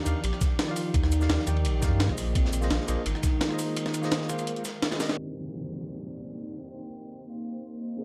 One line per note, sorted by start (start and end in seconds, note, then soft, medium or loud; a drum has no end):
0.00 2.15 F3 medium
0.00 0.23 D4 loud
0.00 2.15 G4 medium
0.00 2.15 D5 medium
0.04 0.14 D#2 medium
0.04 0.18 D#3 medium
0.04 0.19 D#4 medium
0.04 0.19 G4 medium
0.04 0.20 D5 medium
0.04 0.20 F5 loud
0.04 closed hi-hat medium
0.04 ride medium
0.04 cabasa medium
0.24 0.32 A#1 medium
0.24 0.52 G4 loud
0.24 closed hi-hat medium
0.24 ride loud
0.33 cross-stick soft
0.41 kick loud
0.41 snare soft
0.41 closed hi-hat medium
0.41 ride medium
0.41 cabasa medium
0.52 0.60 G4 medium
0.59 0.96 F4 loud
0.59 snare loud
0.59 closed hi-hat medium
0.59 ride medium
0.65 1.17 D#3 medium
0.65 1.18 D#4 medium
0.65 1.19 G4 medium
0.65 cross-stick soft
0.70 1.20 D5 medium
0.70 1.20 F5 loud
0.76 open hi-hat medium
0.76 ride medium
0.76 cabasa medium
0.94 1.28 D#2 loud
0.94 2.00 D#4 loud
0.94 kick loud
0.94 closed hi-hat medium
0.94 ride medium
1.03 cross-stick medium
1.03 snare soft
1.12 closed hi-hat medium
1.12 ride medium
1.12 cabasa medium
1.20 1.44 D#3 medium
1.20 1.45 D#4 medium
1.20 1.45 G4 medium
1.20 1.45 D5 medium
1.20 1.46 F5 loud
1.20 snare soft
1.20 cabasa soft
1.29 1.38 D#2 medium
1.29 snare loud
1.29 closed hi-hat medium
1.29 ride medium
1.39 snare medium
1.46 1.66 D#2 medium
1.46 1.80 D#3 medium
1.46 1.80 D#4 medium
1.46 1.80 G4 medium
1.46 1.81 D5 medium
1.46 1.81 G5 medium
1.46 cross-stick soft
1.46 closed hi-hat medium
1.46 ride medium
1.46 cabasa medium
1.56 ride soft
1.65 1.84 A#1 medium
1.65 closed hi-hat medium
1.65 ride medium
1.81 2.11 G2 medium
1.81 2.06 D#3 loud
1.81 2.07 D#4 loud
1.81 2.07 G4 medium
1.81 2.08 D5 medium
1.81 2.08 F5 loud
1.81 kick loud
1.81 snare soft
1.81 closed hi-hat medium
1.81 ride medium
1.81 cabasa medium
2.00 snare loud
2.00 closed hi-hat medium
2.00 ride medium
2.06 2.34 A#1 loud
2.06 2.59 A#3 medium
2.06 2.59 F4 medium
2.06 2.60 G#4 medium
2.06 kick medium
2.06 cross-stick soft
2.11 2.61 C5 medium
2.11 2.62 D#5 medium
2.18 5.15 D#3 medium
2.18 5.15 G#3 medium
2.18 5.15 A#4 medium
2.18 open hi-hat medium
2.18 ride medium
2.18 cabasa medium
2.35 2.69 A#1 loud
2.35 2.72 C4 loud
2.35 kick loud
2.35 closed hi-hat loud
2.35 ride medium
2.45 snare medium
2.53 closed hi-hat medium
2.53 ride medium
2.53 cabasa medium
2.61 2.86 A#3 loud
2.61 2.86 F4 medium
2.61 2.86 G#4 medium
2.61 2.87 C5 medium
2.61 2.87 D#5 loud
2.61 snare soft
2.61 cabasa soft
2.70 2.79 A#1 loud
2.70 3.07 D4 loud
2.70 snare loud
2.70 closed hi-hat loud
2.70 ride medium
2.80 snare soft
2.87 2.97 A#1 medium
2.87 3.01 A#3 loud
2.87 3.01 F4 medium
2.87 3.02 G#4 medium
2.87 3.02 C5 medium
2.87 3.02 D#5 loud
2.87 closed hi-hat medium
2.87 ride medium
2.87 cabasa medium
3.06 3.14 G#1 medium
3.06 4.82 D#4 loud
3.06 closed hi-hat medium
3.06 ride medium
3.15 cross-stick soft
3.23 kick loud
3.23 snare soft
3.23 closed hi-hat medium
3.23 ride medium
3.23 cabasa medium
3.41 snare loud
3.41 closed hi-hat medium
3.41 ride medium
3.48 4.00 A#3 medium
3.48 4.01 F4 medium
3.48 4.01 G#4 medium
3.48 cross-stick soft
3.52 4.02 C5 medium
3.52 4.03 D#5 loud
3.59 open hi-hat medium
3.59 ride medium
3.59 cabasa medium
3.77 closed hi-hat loud
3.77 ride medium
3.86 cross-stick medium
3.86 snare soft
3.86 closed hi-hat soft
3.94 closed hi-hat medium
3.94 ride medium
3.94 cabasa medium
4.02 4.27 A#3 medium
4.02 4.27 F4 medium
4.02 4.27 G#4 medium
4.02 4.28 C5 medium
4.02 4.28 D#5 loud
4.02 snare soft
4.02 cabasa soft
4.11 snare loud
4.11 closed hi-hat loud
4.11 ride medium
4.21 snare medium
4.28 4.62 A#3 medium
4.28 4.62 F4 medium
4.28 4.63 G#4 medium
4.28 4.63 C5 medium
4.28 4.64 F5 medium
4.28 cross-stick soft
4.28 closed hi-hat medium
4.28 ride medium
4.28 cabasa medium
4.39 closed hi-hat soft
4.39 ride soft
4.39 cabasa soft
4.47 closed hi-hat medium
4.56 closed hi-hat soft
4.65 snare medium
4.65 closed hi-hat medium
4.65 ride medium
4.65 cabasa medium
4.82 snare loud
4.82 closed hi-hat loud
4.82 ride medium
4.90 4.97 A#3 medium
4.90 4.98 F4 medium
4.90 4.98 G#4 medium
4.90 4.99 C5 medium
4.90 4.99 D#5 medium
4.90 cross-stick soft
4.90 snare loud
4.90 ride medium
4.90 cabasa soft
4.99 5.14 C4 medium
4.99 5.15 G4 medium
4.99 5.17 A#4 medium
4.99 5.18 D5 medium
4.99 5.36 D#5 medium
4.99 snare medium
4.99 snare loud
4.99 open hi-hat medium
4.99 ride medium
4.99 cabasa medium
5.09 snare medium
5.09 snare loud
5.09 ride medium
5.15 8.04 A#3 medium
5.15 7.96 C4 medium
5.15 7.97 D#4 medium
5.15 7.97 G4 medium
5.15 7.97 C5 medium
5.15 5.90 C5 medium
5.15 downlifter medium
5.15 cabasa soft
5.21 8.00 D#4 medium
5.88 6.60 D5 medium
6.33 cabasa medium
6.59 7.31 G5 loud
6.59 cabasa soft
6.86 cabasa medium
7.30 7.82 F5 medium
7.30 cabasa soft
7.74 cabasa soft
7.97 8.04 C3 medium
7.97 8.04 C4 medium
7.97 8.04 F4 medium
7.97 8.04 G#4 medium
7.97 8.04 A#4 medium
7.97 8.04 C5 medium
7.97 cabasa soft